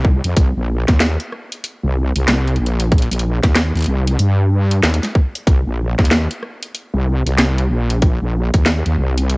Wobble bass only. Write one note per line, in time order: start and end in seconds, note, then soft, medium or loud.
0.00 0.21 C2 loud
0.24 0.34 F2 loud
0.36 0.53 C2 loud
0.56 0.85 A#1 loud
0.88 1.17 D#2 loud
1.83 2.12 C2 loud
2.15 2.26 C2 loud
2.28 2.58 C2 loud
2.59 3.08 A#1 loud
3.11 3.40 A#1 loud
3.43 3.72 D#2 loud
3.75 3.85 D#2 loud
3.87 4.17 C2 loud
4.19 4.81 G2 loud
4.83 5.00 D#2 loud
5.47 5.64 C2 loud
5.66 5.95 A#1 loud
5.99 6.27 D#2 loud
6.94 7.23 C2 medium
7.25 7.36 C2 loud
7.38 7.68 C2 loud
7.69 8.18 A#1 loud
8.21 8.50 A#1 loud
8.54 8.83 D#2 loud
8.86 8.96 D#2 loud
8.98 9.37 C2 loud